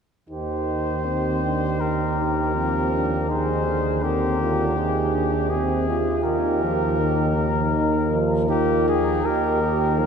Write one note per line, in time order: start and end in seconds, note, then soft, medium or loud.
0.29 6.09 D#2 soft
0.29 2.56 D#3 soft
0.29 1.07 D#4 soft
0.29 1.01 G4 soft
0.29 1.82 C5 soft
1.05 1.44 C4 soft
1.05 1.79 G4 soft
1.43 1.82 D4 soft
1.80 2.18 D#4 soft
1.80 3.31 G4 soft
1.80 3.29 A#4 soft
2.18 2.57 D#4 soft
2.55 3.30 F3 soft
2.55 2.94 C4 soft
2.92 3.32 D4 soft
3.29 3.67 D#3 soft
3.29 4.05 D#4 soft
3.29 4.05 G#4 soft
3.29 4.04 C5 soft
3.66 4.76 D3 soft
4.03 4.40 C4 soft
4.03 5.51 G4 soft
4.03 4.79 A#4 soft
4.41 4.79 F4 soft
4.76 6.22 C3 soft
4.76 5.15 D#4 soft
4.76 5.50 G#4 soft
5.14 5.51 D4 soft
5.50 5.89 C4 soft
5.50 6.23 G#4 soft
5.50 6.26 G#4 soft
5.88 6.72 F4 soft
6.24 8.94 D#2 soft
6.24 6.64 D#3 soft
6.24 7.46 G4 soft
6.24 8.17 A#4 soft
6.62 7.01 F3 soft
6.99 7.47 D#3 soft
6.99 7.34 D#4 soft
7.37 8.52 D#4 soft
7.73 8.09 D#3 soft
7.73 8.45 A#4 soft
8.11 8.51 F3 medium
8.49 9.25 D#3 soft
8.49 9.25 F4 medium
8.49 8.85 G4 medium
8.49 9.26 A#4 soft
8.88 9.27 G#4 medium
9.25 10.06 D#2 medium
9.25 10.01 D#3 medium
9.25 10.06 D#4 medium
9.25 9.60 G4 medium
9.25 10.06 A#4 soft
9.61 10.00 G4 medium
9.99 10.06 F3 soft
9.99 10.06 A#4 soft